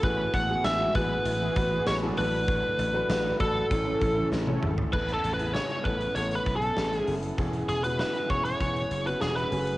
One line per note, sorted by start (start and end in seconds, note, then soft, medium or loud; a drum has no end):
0.00 0.25 A1 loud
0.00 0.91 A2 medium
0.00 2.15 E3 medium
0.00 2.15 G#3 medium
0.00 0.38 B3 medium
0.00 2.15 B3 medium
0.00 0.38 E4 medium
0.00 3.66 F#4 medium
0.00 0.39 F#4 medium
0.00 0.35 B4 loud
0.00 kick loud
0.00 closed hi-hat medium
0.04 0.39 G#4 medium
0.34 0.56 A1 loud
0.34 0.62 F#5 loud
0.34 kick medium
0.34 closed hi-hat medium
0.49 0.84 B3 medium
0.49 0.84 E4 medium
0.49 0.85 F#4 medium
0.49 0.85 G#4 medium
0.64 0.86 A1 loud
0.64 0.93 E5 loud
0.64 snare loud
0.64 closed hi-hat loud
0.64 tambourine medium
0.95 1.17 A1 loud
0.95 1.42 B3 medium
0.95 1.42 E4 medium
0.95 1.42 F#4 medium
0.95 1.42 G#4 medium
0.95 1.90 B4 medium
0.95 kick loud
0.95 closed hi-hat medium
1.25 1.47 A1 loud
1.25 closed hi-hat loud
1.41 1.54 E3 loud
1.41 1.54 B3 loud
1.41 1.54 G#4 loud
1.56 1.78 A1 medium
1.56 1.92 B3 medium
1.56 1.92 E4 medium
1.56 1.92 F#4 medium
1.56 1.92 B4 medium
1.56 kick medium
1.56 closed hi-hat medium
1.72 1.85 E3 medium
1.72 1.85 B3 medium
1.72 1.85 G#4 loud
1.87 2.09 A1 loud
1.87 1.95 C#5 medium
1.87 snare loud
1.87 closed hi-hat medium
1.87 tambourine medium
2.02 2.28 F#3 medium
2.02 2.17 B3 medium
2.02 2.28 D4 loud
2.02 2.18 E4 medium
2.02 2.17 F#4 medium
2.02 2.18 G#4 medium
2.02 2.28 A4 loud
2.17 2.62 A1 loud
2.17 3.06 A2 medium
2.17 3.69 D3 medium
2.17 3.69 F#3 medium
2.17 4.91 A3 medium
2.17 2.79 A3 medium
2.17 2.79 D4 medium
2.17 2.79 F#4 medium
2.17 2.80 A4 medium
2.17 3.36 B4 medium
2.17 open hi-hat medium
2.48 kick loud
2.48 closed hi-hat medium
2.79 3.01 A1 loud
2.79 closed hi-hat medium
2.94 3.29 A3 medium
2.94 3.29 D4 medium
2.94 3.30 F#4 medium
2.94 3.30 B4 loud
3.09 3.31 A1 loud
3.09 snare loud
3.09 closed hi-hat loud
3.09 tambourine medium
3.40 3.62 A1 medium
3.40 3.69 A3 medium
3.40 3.71 D4 medium
3.40 3.71 F#4 medium
3.40 4.28 A4 medium
3.40 3.71 B4 medium
3.40 kick loud
3.40 closed hi-hat medium
3.70 3.93 A1 loud
3.70 4.59 A2 medium
3.70 4.92 C#3 medium
3.70 4.92 E3 medium
3.70 3.95 A3 medium
3.70 3.95 C#4 medium
3.70 4.92 E4 medium
3.70 3.95 E4 medium
3.70 3.96 A4 medium
3.70 kick loud
3.70 closed hi-hat loud
3.86 3.99 E3 loud
3.86 3.99 C#4 loud
3.86 3.99 A4 loud
4.01 4.23 A1 loud
4.01 4.36 A3 medium
4.01 4.36 C#4 medium
4.01 4.36 E4 medium
4.01 4.37 A4 medium
4.01 kick medium
4.01 closed hi-hat medium
4.17 4.30 E3 loud
4.17 4.30 C#4 medium
4.17 4.30 A4 loud
4.32 4.54 A1 loud
4.32 snare medium
4.47 4.73 E3 loud
4.47 4.82 A3 medium
4.47 4.82 C#4 medium
4.47 4.73 C#4 loud
4.47 4.83 E4 medium
4.47 4.73 A4 loud
4.47 4.83 A4 medium
4.47 high tom medium
4.63 4.85 G#1 medium
4.63 mid tom medium
4.78 floor tom medium
4.93 5.15 A1 medium
4.93 5.81 A2 medium
4.93 7.36 C#3 medium
4.93 7.36 A3 medium
4.93 5.28 B3 medium
4.93 7.36 B3 medium
4.93 5.28 C#4 medium
4.93 5.28 E4 medium
4.93 9.49 E4 medium
4.93 5.29 A4 medium
4.93 5.13 B4 medium
4.93 kick loud
4.93 crash medium
5.09 closed hi-hat medium
5.14 5.33 A4 medium
5.24 5.57 A1 medium
5.24 closed hi-hat medium
5.34 5.53 B4 medium
5.39 5.74 B3 medium
5.39 5.74 C#4 medium
5.39 5.74 E4 medium
5.39 5.75 G#4 medium
5.39 closed hi-hat medium
5.54 5.86 C#5 loud
5.54 snare loud
5.70 closed hi-hat soft
5.84 6.07 A1 loud
5.84 6.08 B3 medium
5.84 6.09 C#4 medium
5.84 6.09 E4 medium
5.84 6.09 A4 medium
5.84 6.16 B4 medium
5.84 kick medium
5.84 closed hi-hat medium
6.01 closed hi-hat soft
6.15 6.38 A1 loud
6.15 6.50 B3 medium
6.15 6.51 C#4 medium
6.15 6.51 E4 medium
6.15 6.51 A4 medium
6.15 6.34 C#5 loud
6.15 closed hi-hat medium
6.31 closed hi-hat soft
6.35 6.56 B4 medium
6.46 6.68 B1 medium
6.46 kick medium
6.46 closed hi-hat medium
6.56 6.97 A4 medium
6.62 6.97 B3 medium
6.62 6.97 C#4 medium
6.62 6.97 E4 medium
6.62 6.97 G#5 medium
6.62 closed hi-hat soft
6.77 6.99 A1 loud
6.77 snare loud
6.92 closed hi-hat soft
6.97 7.13 G#4 medium
7.07 7.30 F#1 medium
7.07 7.30 B3 medium
7.07 7.31 C#4 medium
7.07 7.31 E4 medium
7.07 7.31 A4 medium
7.07 open hi-hat medium
7.23 closed hi-hat medium
7.37 7.60 E1 loud
7.37 9.78 C#3 medium
7.37 8.26 E3 medium
7.37 7.73 B3 medium
7.37 9.50 B3 medium
7.37 7.73 C#4 medium
7.37 7.73 E4 medium
7.37 9.78 G#4 medium
7.37 7.73 G#4 loud
7.37 kick loud
7.37 closed hi-hat medium
7.53 closed hi-hat soft
7.69 8.02 E1 medium
7.69 7.83 G#4 medium
7.69 closed hi-hat medium
7.83 8.19 B3 medium
7.83 8.19 C#4 medium
7.83 8.19 E4 medium
7.83 8.19 F#4 medium
7.83 7.98 B4 medium
7.83 closed hi-hat medium
7.99 8.31 B4 medium
7.99 snare loud
8.15 closed hi-hat soft
8.29 8.52 E1 medium
8.29 8.53 B3 medium
8.29 8.53 C#4 medium
8.29 8.53 E4 medium
8.29 8.53 G#4 medium
8.29 8.43 C#5 medium
8.29 kick medium
8.29 closed hi-hat medium
8.45 9.08 C#5 loud
8.45 closed hi-hat soft
8.60 8.82 E1 medium
8.60 8.95 B3 medium
8.60 8.95 C#4 medium
8.60 8.96 E4 medium
8.60 8.96 G#4 medium
8.60 kick medium
8.60 closed hi-hat medium
8.76 closed hi-hat soft
8.90 9.13 F#1 medium
8.90 closed hi-hat medium
9.05 9.41 B3 medium
9.05 9.41 C#4 medium
9.05 9.41 E4 medium
9.05 9.42 F#4 medium
9.05 9.21 B4 medium
9.05 closed hi-hat soft
9.21 9.43 E1 loud
9.21 9.36 G#4 medium
9.21 snare loud
9.36 9.78 B4 medium
9.36 closed hi-hat soft
9.51 9.78 F#1 medium
9.51 9.78 A3 medium
9.51 9.78 C#4 medium
9.51 9.78 F#4 medium
9.51 9.78 G#4 medium
9.51 open hi-hat medium
9.67 closed hi-hat medium